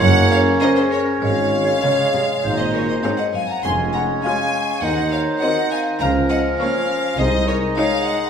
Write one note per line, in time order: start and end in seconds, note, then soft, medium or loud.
0.00 0.49 F#1 medium
0.00 0.49 F#1 loud
0.00 0.49 F#2 loud
0.00 0.94 A#3 medium
0.00 2.15 C#4 medium
0.00 2.11 C#5 medium
0.00 0.29 C#5 medium
0.00 0.31 C#5 medium
0.00 0.30 F#5 loud
0.31 0.60 C#5 medium
0.31 0.39 C#5 medium
0.31 0.39 F5 medium
0.61 0.79 A#3 medium
0.61 1.07 C#4 medium
0.61 0.79 C#4 medium
0.61 1.07 A#4 medium
0.61 0.75 C5 medium
0.61 0.79 C5 medium
0.61 0.68 D#5 loud
0.77 0.91 G#4 medium
0.77 0.92 G#4 medium
0.77 0.83 C5 medium
0.91 1.20 A#4 medium
0.91 1.24 A#4 medium
0.91 1.00 C#5 medium
1.22 1.70 G#1 medium
1.22 1.70 G#2 medium
1.22 3.31 G#3 medium
1.22 2.54 C#5 medium
1.22 2.59 C#5 loud
1.22 2.56 F5 loud
1.83 1.91 C#3 medium
1.83 2.00 G#3 soft
1.83 2.28 C#4 medium
1.83 2.00 C#4 medium
1.83 2.28 G#4 medium
2.14 2.22 C3 medium
2.43 2.91 G#1 medium
2.43 2.92 G#1 medium
2.43 3.03 A#2 medium
2.43 3.31 D#4 medium
2.43 3.31 C5 medium
2.59 2.73 C5 medium
2.59 2.65 C5 medium
2.59 2.74 D#5 medium
2.72 2.88 A#4 medium
2.72 2.80 A#4 medium
2.72 2.88 C#5 medium
2.88 3.03 C5 medium
2.88 3.04 C5 medium
2.88 2.94 D#5 medium
3.03 3.12 G#2 medium
3.03 3.20 G#3 medium
3.03 3.20 C4 medium
3.03 3.49 C4 medium
3.03 3.49 D#4 medium
3.03 3.49 G#4 medium
3.03 3.19 C#5 medium
3.03 3.09 F5 medium
3.18 3.33 D#5 medium
3.18 3.26 D#5 medium
3.18 3.24 F#5 medium
3.33 3.43 F#2 medium
3.33 3.41 F5 medium
3.33 3.49 F5 medium
3.33 3.49 G#5 medium
3.49 3.64 F#5 medium
3.49 3.65 F#5 medium
3.49 3.64 A#5 medium
3.63 4.11 F1 medium
3.63 4.12 F1 medium
3.63 4.11 F2 medium
3.63 4.85 G#3 medium
3.63 4.85 C#4 medium
3.63 4.85 C#5 medium
3.63 3.94 G#5 medium
3.63 3.93 G#5 medium
3.63 3.71 C6 medium
3.93 4.22 F#5 medium
3.93 4.01 F#5 medium
3.93 4.01 A#5 medium
4.23 4.39 G#3 soft
4.23 4.40 C#4 medium
4.23 4.68 C#4 medium
4.23 4.68 F4 medium
4.23 4.68 G#4 medium
4.23 4.79 F5 medium
4.23 4.85 F5 medium
4.23 4.81 G#5 medium
4.82 5.30 D#2 medium
4.82 6.03 D#3 medium
4.82 6.01 D#4 medium
4.82 6.04 C5 medium
4.82 5.10 D#5 medium
4.82 5.15 D#5 medium
4.82 5.12 F#5 medium
5.12 5.40 C#5 medium
5.12 5.45 C#5 medium
5.12 5.20 F5 medium
5.41 5.57 D#3 medium
5.41 5.58 C4 medium
5.41 5.86 C4 medium
5.41 5.86 F#4 medium
5.41 5.87 C5 medium
5.41 5.70 D#5 medium
5.41 5.72 D#5 medium
5.41 5.70 F#5 medium
5.71 5.99 F5 medium
5.71 6.01 F5 medium
5.71 5.79 G#5 medium
6.00 6.48 C#2 medium
6.00 6.48 C#3 medium
6.00 7.19 F3 medium
6.00 7.17 C#4 medium
6.00 7.19 A#4 medium
6.00 6.28 F5 medium
6.00 6.09 F5 medium
6.00 6.08 A#5 medium
6.30 6.58 D#5 medium
6.30 6.38 D#5 medium
6.30 6.38 F#5 medium
6.60 6.76 F3 medium
6.60 6.76 A#3 medium
6.60 7.05 A#3 medium
6.60 7.05 C#4 medium
6.60 7.15 C#5 medium
6.60 7.04 C#5 medium
6.60 6.98 C#5 medium
6.60 7.18 F5 medium
7.18 7.65 C2 medium
7.18 7.65 C3 medium
7.18 8.30 G#3 medium
7.18 8.30 D#4 medium
7.18 7.46 C5 medium
7.18 7.47 C5 medium
7.18 7.48 D#5 medium
7.18 8.30 D#5 medium
7.48 7.75 A#4 medium
7.48 7.55 A#4 medium
7.48 7.56 C#5 medium
7.77 7.93 G#3 medium
7.77 7.93 D#4 medium
7.77 8.21 D#4 medium
7.77 8.21 G#4 medium
7.77 8.05 C#5 medium
7.77 8.07 C#5 medium
7.77 8.06 F5 loud
8.06 8.30 D#5 medium
8.06 8.30 F#5 medium